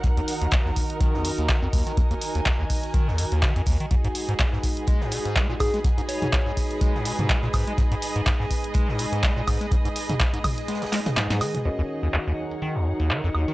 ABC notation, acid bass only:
X:1
M:4/4
L:1/16
Q:"Swing 16ths" 1/4=124
K:Ebm
V:1 name="Acid bass" clef=bass
E,, E,, z E,, E,, E,, z2 E, E,, G,, E,, E, F,, E,, E, | E,, E,, z E,, E,, E,, z2 E, E,, G,, E,, E, F,, E,, E, | A,, A,, z A,, A,, A,, z2 A, A,, C, A,, A, B,, A,, A, | A,, A,, z A,, A,, A,, z2 A, A,, C, A,, A, B,, A,, A, |
A,, A,, z A,, A,, A,, z2 A, A,, C, A,, A, B,, A,, A, | A,, A,, z A,, A,, A,, z2 A, A,, A, D, A,, A,, E, A,, | E,, E,, z E,, E,, E,, z2 E, E,, G,, E,, E, F,, E,, E, |]